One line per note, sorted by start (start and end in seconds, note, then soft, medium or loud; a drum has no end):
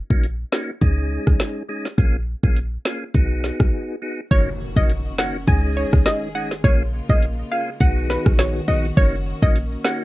0.10 0.45 A#1 medium
0.10 0.26 A#3 medium
0.10 0.26 C#4 medium
0.10 0.26 D#4 medium
0.10 0.27 F#4 medium
0.10 kick loud
0.24 closed hi-hat medium
0.52 0.71 A#3 medium
0.52 0.71 C#4 medium
0.52 0.71 D#4 medium
0.52 0.71 F#4 medium
0.52 snare loud
0.81 1.19 C#2 loud
0.81 1.63 G#3 medium
0.81 1.63 C#4 medium
0.81 1.63 D#4 medium
0.81 1.63 G#4 loud
0.81 kick medium
0.81 closed hi-hat medium
1.27 1.38 B1 medium
1.27 kick loud
1.27 cross-stick medium
1.40 snare loud
1.40 closed hi-hat medium
1.69 1.87 G#3 medium
1.69 1.88 C#4 medium
1.69 1.88 D#4 medium
1.69 1.88 G#4 medium
1.85 snare medium
1.98 2.35 A#1 loud
1.98 2.17 A#3 medium
1.98 2.17 C#4 medium
1.98 2.17 F4 medium
1.98 2.17 G#4 loud
1.98 kick loud
1.98 closed hi-hat medium
2.43 2.78 A#1 medium
2.43 2.59 A#3 medium
2.43 2.59 C#4 medium
2.43 2.59 F4 medium
2.43 2.60 G#4 medium
2.43 kick loud
2.57 closed hi-hat medium
2.85 3.04 A#3 medium
2.85 3.04 C#4 medium
2.85 3.04 F4 medium
2.85 3.04 G#4 medium
2.85 snare loud
3.14 3.52 B1 loud
3.14 3.96 B3 medium
3.14 3.96 D#4 medium
3.14 3.96 F#4 medium
3.14 3.96 G#4 loud
3.14 kick medium
3.14 closed hi-hat medium
3.44 snare medium
3.60 3.71 A#1 loud
3.60 kick loud
3.60 cross-stick medium
4.02 4.21 B3 medium
4.02 4.21 D#4 medium
4.02 4.21 F#4 medium
4.02 4.21 G#4 medium
4.31 4.68 F#1 loud
4.31 5.46 D#3 medium
4.31 4.50 A#3 medium
4.31 5.46 A#3 medium
4.31 6.62 C#4 medium
4.31 4.50 C#4 medium
4.31 4.50 D#4 medium
4.31 5.46 F#4 medium
4.31 4.50 F#4 loud
4.31 4.42 C#5 loud
4.31 kick loud
4.31 closed hi-hat medium
4.31 impact medium
4.76 5.11 A#1 medium
4.76 4.92 A#3 medium
4.76 4.92 C#4 medium
4.76 4.92 D#4 medium
4.76 4.93 F#4 medium
4.76 4.85 D#5 medium
4.76 kick loud
4.90 closed hi-hat medium
5.18 5.37 A#3 medium
5.18 5.37 C#4 medium
5.18 5.37 D#4 medium
5.18 5.37 F#4 medium
5.18 5.29 F#5 medium
5.18 snare loud
5.47 5.85 C#2 loud
5.47 6.63 D#3 medium
5.47 6.29 G#3 medium
5.47 8.94 G#3 medium
5.47 6.29 C#4 medium
5.47 6.29 D#4 medium
5.47 6.63 G#4 medium
5.47 6.29 G#4 loud
5.47 5.59 G#5 medium
5.47 kick medium
5.47 closed hi-hat medium
5.77 5.88 C#5 medium
5.93 6.04 B1 loud
5.93 kick loud
5.93 cross-stick loud
6.06 6.17 D#5 medium
6.06 snare loud
6.06 closed hi-hat medium
6.35 6.54 G#3 medium
6.35 6.54 C#4 medium
6.35 6.54 D#4 medium
6.35 6.54 G#4 medium
6.35 6.46 F#5 medium
6.51 snare medium
6.64 7.01 A#1 loud
6.64 7.80 C#3 medium
6.64 6.83 A#3 medium
6.64 7.80 A#3 medium
6.64 6.83 C#4 medium
6.64 6.83 F4 medium
6.64 7.80 F4 medium
6.64 6.83 G#4 loud
6.64 6.75 C#5 medium
6.64 kick loud
6.64 closed hi-hat medium
7.09 7.44 A#1 medium
7.09 7.25 A#3 medium
7.09 7.25 C#4 medium
7.09 7.25 F4 medium
7.09 7.26 G#4 medium
7.09 7.18 D#5 medium
7.09 kick loud
7.23 closed hi-hat medium
7.51 7.70 A#3 medium
7.51 7.70 C#4 medium
7.51 7.70 F4 medium
7.51 7.70 G#4 medium
7.51 7.62 F5 medium
7.80 8.18 B1 loud
7.80 10.04 D#3 medium
7.80 8.62 B3 medium
7.80 8.96 B3 medium
7.80 8.62 D#4 medium
7.80 10.04 F#4 loud
7.80 8.62 F#4 medium
7.80 8.62 G#4 loud
7.80 7.92 F#5 medium
7.80 kick medium
7.80 closed hi-hat medium
8.10 8.21 B4 medium
8.10 snare medium
8.26 8.60 A#1 loud
8.26 kick loud
8.26 cross-stick loud
8.39 8.50 C#5 medium
8.39 snare loud
8.39 closed hi-hat medium
8.68 8.92 A#1 loud
8.68 8.87 B3 medium
8.68 8.87 D#4 medium
8.68 8.87 F#4 medium
8.68 8.87 G#4 medium
8.68 8.79 D#5 medium
8.97 9.34 F#1 loud
8.97 9.16 A#3 medium
8.97 10.04 A#3 medium
8.97 9.16 C#4 medium
8.97 10.04 C#4 medium
8.97 9.16 D#4 medium
8.97 9.16 F#4 loud
8.97 9.08 C#5 loud
8.97 kick loud
8.97 closed hi-hat medium
9.42 9.77 A#1 medium
9.42 9.58 A#3 medium
9.42 9.58 C#4 medium
9.42 9.58 D#4 medium
9.42 9.59 F#4 medium
9.42 9.51 D#5 medium
9.42 kick loud
9.56 closed hi-hat medium
9.84 10.03 A#3 medium
9.84 10.03 C#4 medium
9.84 10.03 D#4 medium
9.84 10.03 F#4 medium
9.84 9.95 F#5 medium
9.84 snare loud